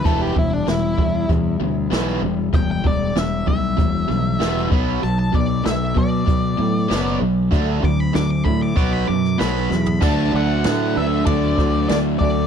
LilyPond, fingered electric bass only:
\new Staff \with { instrumentName = "Fingered electric bass" } { \clef bass \time 4/4 \key e \minor \tempo 4 = 96 e,,8 e,,8 e,,8 e,8 e,8 d,8 b,,8 e,,8 | e,,8 e,,8 e,,8 b,,8 e,,8 b,,8 e,,8 b,,8 | b,,8 b,,8 b,,8 b,8 b,8 a,8 fis,,8 b,,8 | d,8 d,8 d,8 a,8 b,,8 fis,8 b,,8 e,8 |
d,8 d,8 a,8 d,8 d,8 d,8 d,8 d,8 | }